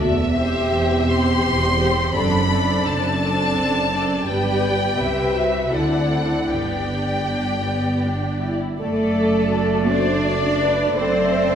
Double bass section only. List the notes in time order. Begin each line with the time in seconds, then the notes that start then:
0.00 E1
0.71 E1
1.44 E1
2.13 F#1
2.85 F#1
3.58 F#1
4.27 G1
4.99 C2
5.73 D2
6.50 G1
8.80 F#1
10.98 F#1